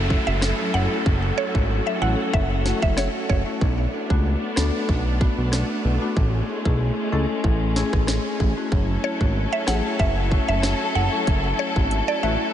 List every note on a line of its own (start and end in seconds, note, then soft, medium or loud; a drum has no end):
0.00 0.17 F#1 loud
0.00 3.57 F#3 medium
0.00 3.57 C#4 medium
0.00 1.03 E4 medium
0.00 3.57 A4 medium
0.00 downlifter medium
0.10 0.24 A3 medium
0.10 0.24 C#4 medium
0.10 0.24 E4 medium
0.10 0.24 F#4 medium
0.10 kick medium
0.27 0.53 F#1 medium
0.27 0.39 E5 medium
0.41 cross-stick medium
0.41 snare loud
0.74 0.88 F#1 medium
0.74 0.81 E4 medium
0.74 0.81 A4 medium
0.74 0.88 F#5 medium
0.91 1.03 A3 medium
0.91 1.03 C#4 medium
0.91 1.03 E4 medium
0.91 1.03 F#4 medium
1.06 1.32 F#1 loud
1.06 3.59 F#4 medium
1.06 kick loud
1.38 1.45 E4 medium
1.38 1.45 F#4 medium
1.38 1.51 C#5 medium
1.55 1.80 G#1 medium
1.55 1.67 A3 medium
1.55 1.67 C#4 medium
1.55 1.67 E4 medium
1.55 1.67 F#4 medium
1.55 kick loud
1.87 1.99 E5 medium
2.02 2.15 A1 loud
2.02 2.15 A3 medium
2.02 2.15 C#4 medium
2.02 2.15 E4 medium
2.02 2.15 F#4 medium
2.02 2.15 F#5 medium
2.33 2.73 F#1 loud
2.33 2.47 E5 medium
2.33 kick medium
2.65 2.79 A3 medium
2.65 2.79 C#4 medium
2.65 2.79 E4 medium
2.65 2.79 F#4 medium
2.65 snare medium
2.82 3.08 F#1 medium
2.82 2.95 E5 medium
2.82 kick loud
2.97 3.11 C#5 medium
2.97 cross-stick medium
2.97 snare medium
3.29 3.43 F#1 medium
3.29 3.36 E4 medium
3.29 3.36 F#4 medium
3.29 3.43 C#5 medium
3.29 kick medium
3.46 3.58 A3 medium
3.46 3.58 C#4 medium
3.46 3.58 E4 medium
3.46 3.58 F#4 medium
3.61 3.87 B1 loud
3.61 8.68 A3 medium
3.61 6.14 B3 medium
3.61 6.14 D4 medium
3.61 kick loud
3.93 4.00 D4 medium
3.93 4.00 F#4 loud
4.10 4.36 C#2 medium
4.10 4.22 A3 medium
4.10 4.22 B3 medium
4.10 4.22 D4 medium
4.10 4.22 F#4 medium
4.10 kick loud
4.56 4.71 D2 loud
4.56 4.71 A3 medium
4.56 4.71 B3 medium
4.56 4.71 D4 medium
4.56 4.71 A4 loud
4.56 cross-stick medium
4.56 snare loud
4.89 5.28 B1 loud
4.89 kick loud
5.21 5.34 A3 medium
5.21 5.34 B3 medium
5.21 5.35 D4 medium
5.21 5.35 F#4 loud
5.21 kick loud
5.38 5.63 B1 medium
5.52 cross-stick medium
5.52 snare loud
5.85 5.98 B1 loud
5.85 5.91 D4 medium
5.85 5.92 E4 medium
6.02 6.14 A3 medium
6.02 6.14 B3 medium
6.02 6.14 D4 medium
6.02 6.14 F#4 medium
6.17 6.42 A1 loud
6.17 8.69 G#3 medium
6.17 12.53 C#4 medium
6.17 kick loud
6.48 6.55 E4 medium
6.48 6.55 G#4 medium
6.65 6.91 B1 medium
6.65 6.77 A3 medium
6.65 6.77 C#4 medium
6.65 6.78 E4 medium
6.65 6.78 G#4 medium
6.65 kick medium
7.12 7.26 C#2 medium
7.12 7.26 A3 medium
7.12 7.26 C#4 medium
7.12 7.26 E4 medium
7.12 7.26 A4 loud
7.44 7.83 A1 loud
7.44 kick medium
7.76 7.90 A3 medium
7.76 7.90 C#4 medium
7.76 7.90 E4 medium
7.76 7.90 G#4 loud
7.76 snare medium
7.93 8.19 A1 medium
7.93 kick loud
7.93 cross-stick medium
8.07 cross-stick medium
8.07 snare loud
8.40 8.54 A1 medium
8.40 8.47 E4 medium
8.40 8.47 G#4 loud
8.40 kick medium
8.57 8.69 A3 medium
8.57 8.69 C#4 medium
8.57 8.69 E4 medium
8.57 8.69 F#4 medium
8.72 8.97 F#1 loud
8.72 12.53 F#3 medium
8.72 12.53 E4 medium
8.72 12.53 A4 medium
8.72 kick loud
9.04 9.11 E4 medium
9.04 9.11 F#4 medium
9.04 9.18 C#5 medium
9.21 9.46 G#1 medium
9.21 9.33 A3 medium
9.21 9.33 C#4 medium
9.21 9.33 E4 medium
9.21 9.33 F#4 medium
9.21 kick loud
9.53 9.65 E5 medium
9.67 9.81 A1 medium
9.67 9.81 A3 medium
9.67 9.81 C#4 medium
9.67 9.81 E4 medium
9.67 9.81 G#4 medium
9.67 9.81 F#5 medium
9.67 cross-stick medium
9.67 snare loud
9.99 10.38 F#1 loud
9.99 10.13 E5 medium
9.99 kick loud
10.31 10.45 A3 medium
10.31 10.45 C#4 medium
10.31 10.45 E4 medium
10.31 10.45 F#4 medium
10.31 kick loud
10.48 10.74 F#1 medium
10.48 10.61 E5 medium
10.63 cross-stick medium
10.63 snare loud
10.95 11.09 F#1 medium
10.95 11.02 E4 medium
10.95 11.02 F#4 medium
10.95 11.09 F#5 medium
11.12 11.24 A3 medium
11.12 11.24 C#4 medium
11.12 11.24 E4 medium
11.12 11.24 A4 medium
11.27 11.53 F#1 loud
11.27 kick loud
11.27 closed hi-hat medium
11.59 11.66 E4 medium
11.59 11.66 F#4 medium
11.59 11.73 C#5 medium
11.76 12.02 G#1 medium
11.76 11.88 A3 medium
11.76 11.88 C#4 medium
11.76 11.88 E4 medium
11.76 11.88 F#4 medium
11.76 kick medium
11.91 closed hi-hat medium
12.08 12.20 D5 medium
12.23 12.37 A1 loud
12.23 12.37 A3 medium
12.23 12.37 C#4 medium
12.23 12.37 E4 medium
12.23 12.37 F#4 medium
12.23 12.37 E5 medium